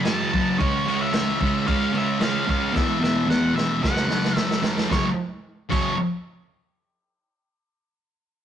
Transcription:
0.05 F#2 C#3 F#3 A5, snare, crash
0.33 F#2 C#3 F#3, kick, crash
0.58 C#3 G#3 C#4 C#5, kick, crash
0.86 C#3 G#3 C#4, crash
1.01 E5
1.13 C#3 G#3 C#4, snare, crash
1.40 C#3 G#3 C#4, kick, crash
1.66 C#3 G#3 C#4 F5, kick, crash
1.93 C#3 G#3 C#4, crash
1.97 E5
2.20 C#3 G#3 C#4, snare, crash
2.24 F5
2.46 C#3 G#3 C#4, kick, crash
2.51 F5
2.71 E2 B2 E3
2.76 E5, kick, snare
2.99 E2 B2 E3
3.04 E5, snare
3.26 E2 B2 E3 F#5
3.31 snare
3.54 E2 B2 E3 E5
3.58 snare
3.81 F#2 C#3 F#3 F#5, kick, snare
3.97 snare
4.08 F#2 C#3 F#3, snare
4.25 snare
4.36 F#2 C#3 F#3 E5, snare
4.51 snare
4.62 F#2 C#3 F#3, snare
4.78 snare
4.89 F#2 C#3 F#3 C#5, kick, snare
5.69 F#2 C#3 F#3 C#5, kick, crash

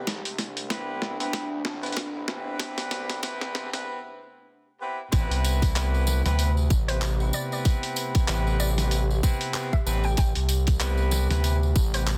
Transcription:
Already playing: C3 A3
0.07 A1 D4, kick, snare, closed hi-hat
0.25 C2, closed hi-hat
0.39 snare, closed hi-hat
0.57 closed hi-hat
0.70 B3 C4 E4 G4 B4, kick, snare, closed hi-hat
1.02 snare
1.20 D2 B3 C4 E4 G4 B4, closed hi-hat
1.33 kick, snare, closed hi-hat
1.65 A1, snare
1.83 B3 C4 E4 G4 B4, closed hi-hat
1.86 closed hi-hat
1.92 closed hi-hat
1.97 kick, snare, closed hi-hat
2.15 B3 C4 E4 G4 B4
2.28 A1, snare
2.60 C2, kick, snare, closed hi-hat
2.78 snare, closed hi-hat
2.91 snare, closed hi-hat
3.10 snare, closed hi-hat
3.23 C2 B3 C4 E4 G4 B4, kick, snare, closed hi-hat
3.41 snare
3.55 C2, snare, closed hi-hat
3.72 B3 C4 E4 G4 B4, snare, closed hi-hat
4.81 B3 C4 E4 G4 B4
5.12 A1 C3 A3 B3 C4 E4 G4 B4, kick, closed hi-hat, tambourine
5.30 C2, closed hi-hat, tambourine
5.44 closed hi-hat, tambourine
5.62 kick, closed hi-hat, tambourine
5.76 B3 C4 E4 G4 B4, clap, closed hi-hat, tambourine
5.94 tambourine
6.07 snare, tambourine
6.26 D2 B3 C4 E4 G4 B4, snare, closed hi-hat, tambourine
6.39 closed hi-hat, tambourine
6.57 tambourine
6.70 A1, kick, tambourine
6.88 B3 C4 E4 G4 B4 C5, closed hi-hat, tambourine
7.02 clap, closed hi-hat, tambourine
7.20 B3 C4 E4 G4 B4, tambourine
7.33 D5, tambourine
7.52 D5, tambourine
7.65 kick, closed hi-hat, tambourine
7.83 closed hi-hat, tambourine
7.96 closed hi-hat, tambourine
8.15 kick, closed hi-hat, tambourine
8.28 A1 B3 C4 E4 G4 B4, clap, closed hi-hat, tambourine
8.47 tambourine
8.60 D5, tambourine
8.78 B3 C4 E4 G4 B4, snare, closed hi-hat, tambourine
8.91 closed hi-hat, tambourine
9.11 tambourine
9.23 B3 C4 E4 G4 B4, kick, tambourine
9.41 closed hi-hat, tambourine
9.54 B3 C4 E4 G4 B4, clap, closed hi-hat, tambourine
9.73 E5, kick, tambourine
9.86 A1 B3 C4 E4 G4 B4, tambourine
10.04 G5, tambourine
10.17 A1 G5, kick, closed hi-hat, tambourine
10.35 C2, closed hi-hat, tambourine
10.49 closed hi-hat, tambourine
10.67 kick, closed hi-hat, tambourine
10.80 B3 C4 E4 G4 B4, clap, closed hi-hat, tambourine
10.97 tambourine
11.11 snare, tambourine
11.31 D2 B3 C4 E4 G4 B4, snare, closed hi-hat, tambourine
11.44 closed hi-hat, tambourine
11.63 tambourine
11.75 A1, kick, tambourine
11.94 B3 C4 E4 G4 B4 C5, closed hi-hat, tambourine
12.07 clap, closed hi-hat, tambourine

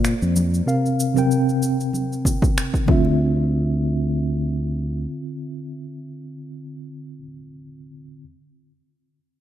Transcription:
Already playing: A#2 A#3 A4 C5 D5 F5
0.05 finger snap, shaker
0.22 F2, shaker
0.36 high conga, shaker
0.54 shaker
0.66 C3 C4 A#4 F5, shaker
0.86 shaker
1.00 shaker
1.14 C3 C4 A#4, high conga, shaker
1.18 G5
1.31 shaker
1.49 shaker
1.62 shaker
1.80 shaker
1.93 high conga, shaker
2.13 shaker
2.25 kick, low conga, shaker
2.42 kick, low conga, shaker
2.58 finger snap, shaker
2.74 kick, shaker
2.86 D2 D3 C4 F4, kick, high conga
2.91 E5
3.05 low conga

